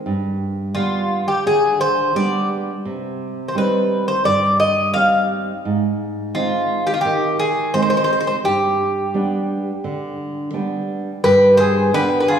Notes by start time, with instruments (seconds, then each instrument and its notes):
0.06 nylon-string guitar G2
0.75 nylon-string guitar G3 B3 D4, bouzouki F4
1.28 bouzouki G4
1.46 nylon-string guitar D3, bouzouki G#4
1.81 bouzouki C5
2.15 nylon-string guitar G3 B3 D4, bouzouki D5
2.85 nylon-string guitar C3
3.48 bouzouki C5
3.55 nylon-string guitar G3 C4 D#4, bouzouki B4
4.08 bouzouki C5
4.25 nylon-string guitar G2, bouzouki D5
4.60 bouzouki D#5
4.94 nylon-string guitar G3 C4 D#4, bouzouki F5
5.65 nylon-string guitar G#2
6.35 nylon-string guitar G#3 C4 D#4, bouzouki F4
6.87 bouzouki G4
6.94 bouzouki F4
7.01 nylon-string guitar D#3, bouzouki G4
7.39 bouzouki G#4
7.74 nylon-string guitar G#3 C4 D#4, bouzouki C5
7.82 bouzouki C5
7.90 bouzouki C5
7.97 bouzouki C5
8.04 bouzouki C5
8.13 bouzouki C5
8.20 bouzouki C5
8.27 bouzouki C5
8.44 nylon-string guitar G2, bouzouki G4
9.14 nylon-string guitar G3 B3 D4
9.84 nylon-string guitar D3
10.54 nylon-string guitar G3 B3 D4
11.24 nylon-string guitar G2, mandolin G4, bouzouki B4
11.57 mandolin G#4, bouzouki C5
11.93 nylon-string guitar D3 B3 D4, mandolin G4, bouzouki B4
12.20 mandolin G4, bouzouki B4
12.28 mandolin F4, bouzouki G#4